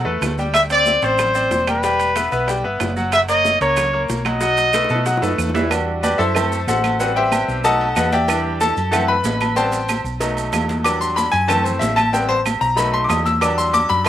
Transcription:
0.05 E2 A3 A4 B4, high bongo, high conga
0.21 D2, high bongo, low bongo, high conga, high timbale, low timbale, claves, maracas
0.38 G3 G4 G5, high bongo, high conga, maracas
0.54 E5, high bongo, high conga, high timbale, claves, maracas
0.70 C4 C5 D5, high conga, high timbale, maracas
0.86 high bongo, high conga, maracas
1.02 A1 C4 C5 D5, high bongo, high conga, high timbale, maracas
1.18 high bongo, high conga, low conga, high timbale, claves, maracas
1.35 C4 C5 D5, high bongo, high conga, maracas
1.51 E1, high bongo, low bongo, high conga, high timbale, maracas
1.67 G3 G4 B4 G5, high bongo, high conga, high timbale, claves, maracas
1.83 G3 G4 G5, high bongo, maracas
2.00 high conga, high timbale, maracas
2.16 B3 B4 E5, high bongo, high conga, high timbale, claves, maracas
2.32 B1 B3 B4 E5, high bongo, high conga, maracas
2.47 G3 G4 G5, high bongo, high conga, high timbale, maracas
2.64 G1 B3 B4 E5, high bongo, high conga
2.80 F#1, high bongo, low bongo, high conga, high timbale, low timbale, claves, maracas
2.96 F#3 F#4 F#5, high bongo, high conga, maracas
3.12 E5, high bongo, high conga, high timbale, claves, maracas
3.29 A#3 A#4 C#5 D#5, high conga, high timbale, maracas
3.45 high bongo, high conga, maracas
3.61 C#2 A#3 A#4 C#5, high conga, high timbale, maracas
3.77 high bongo, high conga, low conga, high timbale, claves, maracas
3.93 A#3 A#4 C#5, high bongo, high conga
4.09 B1, high bongo, low bongo, high conga, high timbale, maracas
4.25 F#3 F#4 D#5 F#5, high bongo, high conga, high timbale, claves, maracas
4.41 F#3 F#4 F#5, high bongo, maracas
4.57 high conga, high timbale, maracas
4.73 A3 A4 B4, high bongo, high conga, high timbale, claves, maracas
4.84 high bongo
4.89 B2 A3 A4 B4, maracas
4.96 low bongo
5.06 F#3 F#4 F#5, high bongo, high conga, high timbale, maracas
5.17 low bongo
5.22 F#2 A3 A4 B4, high conga, high timbale, maracas
5.28 low bongo
5.38 E2, high conga, high timbale, claves, maracas
5.50 low bongo
5.54 E3 E4 E5, high conga, low timbale, maracas
5.61 low bongo
5.70 G3 D4 F#4, cowbell, high conga, low agogo, claves, maracas
5.88 high conga
6.03 D4 G4 B4 D5, cowbell, high conga, low timbale, low agogo, maracas
6.18 F#2 E4 A4 C5 E5, high conga, low agogo, maracas
6.35 A3 C4 E4, cowbell, high conga, low conga, low agogo, claves, maracas
6.52 high conga, maracas
6.67 A1 F#4 A4 C5 F#5, cowbell, high conga, low timbale, low agogo, maracas
6.84 cowbell, high conga, low agogo, claves, maracas
7.00 G3 C4 F#4 B4 F#5, cowbell, maracas
7.16 G4 C5 E5 G5, cowbell, high conga
7.32 cowbell, high conga, low timbale, low agogo, claves, maracas
7.48 B1, maracas
7.64 F#3 A3 D#4 A4 D#5 F#5 A5, cowbell, high conga, low agogo, maracas
7.80 high conga, low agogo
7.96 E2 F#4 B4 D#5 F#5, cowbell, high conga, low timbale, low agogo, claves, maracas
8.12 G4 D5 E5 G5, cowbell, high conga, maracas
8.28 E3 G3 D4, cowbell, high conga, low agogo, claves, maracas
8.45 high conga
8.61 A4 A5, cowbell, high conga, low timbale, low agogo, maracas
8.77 F#2, high conga, low agogo, maracas
8.91 E3 A3 C4 A4 E5 F#5 A5, cowbell, high conga, low conga, low agogo, claves, maracas
9.08 B4 B5, high conga
9.24 A1, cowbell, high conga, low timbale, low agogo, maracas
9.41 cowbell, high conga, low agogo, claves, maracas
9.56 G3 B3 C4 C5 G5 A5 C6, cowbell, maracas
9.72 cowbell, high conga, maracas
9.89 cowbell, high conga, low timbale, low agogo, claves, maracas
10.04 B1, maracas
10.20 F#3 A3 D#4, cowbell, high conga, low agogo, maracas
10.37 high conga, low agogo, maracas
10.53 E2, cowbell, high conga, low timbale, low agogo, claves, maracas
10.69 cowbell, high conga, maracas
10.84 F#3 G3 D4 D6, cowbell, low agogo, claves, maracas
11.01 C6, high conga, maracas
11.16 B5, cowbell, high conga, low timbale, low agogo, maracas
11.32 F#2 G#5, high conga, low agogo, maracas
11.48 E3 A3 C4 A5, cowbell, high conga, low conga, low agogo, claves, maracas
11.64 C5, high conga, low conga, maracas
11.79 A1 E5, cowbell, high conga, low timbale, low agogo, maracas
11.96 A5, cowbell, high conga, low agogo, claves, maracas
12.13 G3 B3 C4 G5, cowbell, high conga, maracas
12.29 C5, cowbell, high conga
12.46 cowbell, high conga, low timbale, low agogo, claves, maracas
12.61 B1 A#5, maracas
12.76 F#3 A3 D#4 B5, cowbell, high conga, low agogo, maracas
12.94 C6, high conga, low agogo
13.04 D6
13.09 E2 D#6, cowbell, high conga, low timbale, low agogo, claves, maracas
13.26 E6, cowbell, high conga, maracas
13.41 F#3 G3 D4 D6, cowbell, low agogo, claves, maracas
13.58 C6, high conga, maracas
13.73 D6, cowbell, high conga, low timbale, low agogo, maracas
13.89 F#2 B5, high conga, low agogo, maracas
14.05 E3, cowbell, low agogo

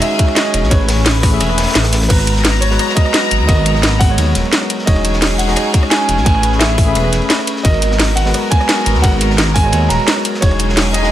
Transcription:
Already playing: D#3 F#3 G#3 C#4 D#4 F#4 G#4 C#5 D#5
0.00 E5, closed hi-hat, ride
0.19 kick, closed hi-hat, ride
0.28 cross-stick, ride
0.35 D#5, snare, closed hi-hat, ride
0.54 E1, cross-stick, closed hi-hat, ride
0.63 B1, snare
0.70 A1 A3 C#4 G#4 B4 C#5, kick, closed hi-hat, ride
0.88 snare, closed hi-hat, open hi-hat
0.98 snare
1.06 snare, closed hi-hat, open hi-hat
1.23 kick, cross-stick, snare, open hi-hat, ride
1.31 A3 C#4 G#4 E5
1.41 E1, cross-stick, closed hi-hat, ride
1.49 cross-stick
1.58 E1, snare, closed hi-hat, open hi-hat
1.63 snare, open hi-hat
1.67 snare, open hi-hat
1.70 snare, open hi-hat
1.75 A1, snare, closed hi-hat, open hi-hat
1.83 cross-stick, snare, open hi-hat
1.92 snare, closed hi-hat, open hi-hat
2.01 snare, open hi-hat
2.08 G#1 F#3 G#3 B3 F#4 B4 A#5, kick, closed hi-hat, ride, crash
2.19 cross-stick, ride
2.27 closed hi-hat, ride
2.36 snare
2.45 snare, closed hi-hat, open hi-hat
2.61 C#5, closed hi-hat, ride
2.70 G#3 B3 F#4 B4, snare
2.79 cross-stick, closed hi-hat, ride
2.89 snare
2.95 D#5, kick, closed hi-hat, ride
3.06 cross-stick, ride
3.14 snare, closed hi-hat, ride
3.31 G#1, closed hi-hat, ride
3.40 D#2
3.47 G#1 G#3 B3 F#4 A#4 D#5, kick, closed hi-hat, ride
3.58 cross-stick
3.66 closed hi-hat, ride
3.75 snare
3.83 snare, closed hi-hat, ride
3.99 F#5, kick, open hi-hat, ride
4.08 G#3 B3 F#4 C#5
4.18 D#2, closed hi-hat, ride
4.27 cross-stick
4.35 D#1, snare, closed hi-hat, ride
4.45 ride
4.53 snare, closed hi-hat, ride
4.62 cross-stick
4.70 closed hi-hat, ride
4.79 snare
4.86 E1 G#3 C#4 D#4 F#4 G#4 C#5 D#5, kick, closed hi-hat, ride
4.96 cross-stick, ride
5.05 closed hi-hat, ride
5.13 snare
5.22 snare, closed hi-hat, open hi-hat
5.38 F#5, closed hi-hat, ride
5.48 G#3 D#4 F#4 D#5, snare
5.56 cross-stick, closed hi-hat, ride
5.74 kick, closed hi-hat, ride
5.83 cross-stick, ride
5.90 G#5, snare, closed hi-hat, ride
6.09 E1, closed hi-hat, ride
6.17 B1, snare
6.25 A1 A3 C#4 G#4 B4 G#5, kick, closed hi-hat, ride
6.35 cross-stick
6.43 closed hi-hat, ride
6.52 snare
6.59 E5, snare, closed hi-hat, ride
6.78 kick, open hi-hat, ride
6.86 A3 C#4 G#4 E5
6.95 E1, closed hi-hat, ride
7.04 cross-stick
7.13 E1, snare, closed hi-hat, ride
7.22 ride
7.30 snare, closed hi-hat, ride
7.39 cross-stick
7.47 closed hi-hat, ride
7.56 snare
7.63 G#1 F#3 G#3 B3 F#4 A#4 D#5, kick, closed hi-hat, ride
7.74 cross-stick, ride
7.82 closed hi-hat, ride
7.91 snare
8.00 snare, closed hi-hat, open hi-hat
8.16 F#5, closed hi-hat, ride
8.25 G#3 B3 F#4 B4, snare
8.34 cross-stick, closed hi-hat, ride
8.51 G#5, kick, closed hi-hat, ride
8.60 cross-stick, ride
8.69 snare, closed hi-hat, ride
8.86 G#1, closed hi-hat, ride
8.95 D#2, snare
9.02 G#1 G#3 B3 F#4 A#4 F#5, kick, closed hi-hat, ride
9.12 cross-stick
9.21 closed hi-hat, ride
9.30 snare
9.38 snare, closed hi-hat, ride
9.54 G#5, kick, open hi-hat, ride
9.63 G#3 B3 F#4 C#5
9.72 D#2, closed hi-hat, ride
9.82 cross-stick
9.89 D#1 A#5, snare, closed hi-hat, ride
10.00 ride
10.07 snare, closed hi-hat, ride
10.17 cross-stick
10.25 closed hi-hat, ride
10.34 snare
10.41 E1 F#3 G#3 C#4 D#4 F#4 G#4 C#5, kick, closed hi-hat, ride
10.51 cross-stick, ride
10.59 closed hi-hat, ride
10.69 snare
10.77 snare, closed hi-hat, open hi-hat
10.93 D#5, closed hi-hat, ride
11.03 G#3 D#4 F#4 D#5, snare

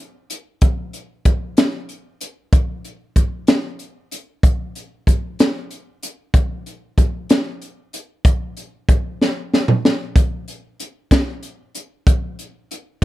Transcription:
0.30 closed hi-hat
0.61 kick, closed hi-hat
0.93 closed hi-hat
1.25 kick, closed hi-hat
1.57 snare, closed hi-hat
1.89 closed hi-hat
2.21 closed hi-hat
2.53 kick, closed hi-hat
2.85 closed hi-hat
3.16 kick, closed hi-hat
3.47 snare, closed hi-hat
3.79 closed hi-hat
4.11 closed hi-hat
4.43 kick, closed hi-hat
4.75 closed hi-hat
5.07 kick, closed hi-hat
5.39 snare, closed hi-hat
5.71 closed hi-hat
6.03 closed hi-hat
6.34 kick, closed hi-hat
6.66 closed hi-hat
6.98 kick, closed hi-hat
7.29 snare, closed hi-hat
7.62 closed hi-hat
7.93 closed hi-hat
8.25 kick, closed hi-hat
8.57 closed hi-hat
8.89 kick, closed hi-hat
9.21 snare
9.54 snare
9.68 mid tom
9.85 snare
10.16 kick, closed hi-hat
10.48 closed hi-hat
10.80 closed hi-hat
11.11 kick, snare, closed hi-hat
11.43 closed hi-hat
11.75 closed hi-hat
12.07 kick, closed hi-hat
12.39 closed hi-hat
12.71 closed hi-hat

